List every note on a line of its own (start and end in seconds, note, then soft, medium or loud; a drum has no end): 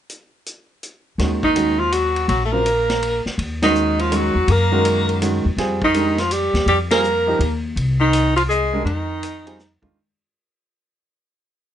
0.10 closed hi-hat soft
0.46 closed hi-hat soft
0.83 closed hi-hat soft
1.18 2.24 D#2 medium
1.18 1.40 D#3 soft
1.18 1.40 G#3 soft
1.18 1.40 C#4 soft
1.18 1.41 F#4 medium
1.18 snare soft
1.18 ride soft
1.43 1.81 D#3 medium
1.43 1.81 D#4 medium
1.43 kick soft
1.56 1.77 D#3 medium
1.56 1.77 G#3 soft
1.56 1.77 C#4 soft
1.56 1.77 F#4 medium
1.56 hi-hat pedal soft
1.56 ride medium
1.79 1.94 F3 medium
1.79 1.94 F4 medium
1.92 2.28 F#3 medium
1.92 2.28 F#4 medium
1.92 hi-hat pedal soft
1.92 ride medium
2.16 ride soft
2.28 3.22 A#1 medium
2.28 2.42 F#3 medium
2.28 2.42 F#4 medium
2.28 ride soft
2.45 2.55 A3 medium
2.45 2.54 A4 medium
2.52 2.64 C#3 medium
2.52 2.64 F#3 soft
2.52 3.26 A#3 medium
2.52 2.64 C4 soft
2.52 2.64 F4 medium
2.52 3.26 A#4 loud
2.66 hi-hat pedal soft
2.66 ride medium
2.90 snare medium
2.90 ride soft
3.03 ride medium
3.26 muted upright bass stroke soft
3.26 snare soft
3.38 4.31 D#2 medium
3.38 ride soft
3.62 4.09 D#3 medium
3.62 4.02 D#3 medium
3.62 4.09 G#3 medium
3.62 4.09 C#4 medium
3.62 4.03 D#4 medium
3.62 4.09 F#4 medium
3.62 snare medium
3.62 ride medium
3.75 hi-hat pedal soft
3.99 4.15 F3 medium
3.99 4.17 F4 medium
3.99 ride soft
4.11 4.33 D#3 medium
4.11 4.51 F#3 medium
4.11 4.33 G#3 medium
4.11 4.33 C#4 medium
4.11 4.33 F#4 medium
4.11 hi-hat pedal medium
4.11 ride medium
4.15 4.53 F#4 medium
4.35 4.47 E2 medium
4.48 5.41 F#2 medium
4.48 5.22 A#3 medium
4.48 ride medium
4.52 5.23 A#4 medium
4.72 5.19 D#3 medium
4.72 5.19 G#3 medium
4.72 5.19 C#4 medium
4.72 5.19 F#4 medium
4.85 hi-hat pedal soft
4.85 ride medium
5.09 ride soft
5.22 5.43 D#3 medium
5.22 5.43 G#3 medium
5.22 5.43 C#4 medium
5.22 5.43 F#4 medium
5.22 hi-hat pedal medium
5.22 ride medium
5.45 5.56 E2 medium
5.57 6.50 F2 medium
5.57 5.80 G3 medium
5.57 5.80 C4 medium
5.57 5.79 F4 soft
5.57 5.80 G#4 medium
5.57 snare soft
5.57 ride medium
5.82 6.22 D#3 medium
5.82 6.22 D#4 medium
5.82 kick soft
5.94 6.16 G#3 medium
5.94 6.16 D4 soft
5.94 6.16 G4 soft
5.94 6.16 A#4 medium
5.94 hi-hat pedal soft
5.94 ride medium
6.18 6.34 F3 medium
6.18 6.34 F4 medium
6.18 snare soft
6.18 ride soft
6.31 6.67 G3 medium
6.31 6.68 G4 medium
6.31 hi-hat pedal soft
6.31 ride medium
6.54 6.66 D#2 medium
6.54 snare soft
6.54 ride soft
6.66 7.36 F2 medium
6.66 6.79 G3 medium
6.66 6.79 G4 medium
6.66 ride soft
6.91 7.02 G3 medium
6.91 7.60 A#3 medium
6.91 7.02 C4 medium
6.91 7.02 F4 medium
6.91 7.03 G#4 medium
6.91 7.60 A#4 medium
6.91 snare medium
6.91 ride medium
7.04 hi-hat pedal soft
7.27 7.39 F3 medium
7.27 7.39 A#3 medium
7.27 7.39 D#4 soft
7.27 7.39 G4 medium
7.39 7.73 D#2 medium
7.39 ride soft
7.76 8.81 C2 medium
7.76 ride soft
8.00 8.34 D#3 medium
8.00 8.34 D#4 medium
8.13 hi-hat pedal medium
8.13 ride medium
8.36 8.42 F3 medium
8.36 8.42 F4 medium
8.36 ride medium
8.49 8.83 G#3 medium
8.49 8.83 G#4 medium
8.49 hi-hat pedal medium
8.73 8.84 G#3 medium
8.73 8.85 D4 medium
8.73 8.85 G4 medium
8.73 8.85 A#4 medium
8.84 9.78 F2 medium
8.84 9.78 D#3 medium
8.84 9.78 D#4 medium
8.84 ride soft
9.23 hi-hat pedal medium
9.23 ride medium
9.46 9.57 G3 medium
9.46 9.57 C4 medium
9.46 9.57 F4 medium
9.46 9.57 G#4 medium
9.46 ride medium
9.59 snare soft
9.59 hi-hat pedal soft
9.82 9.94 E2 medium
9.82 9.95 D#3 medium
9.82 9.95 G#3 medium
9.82 9.95 D4 medium
9.82 9.95 F4 medium
9.82 kick soft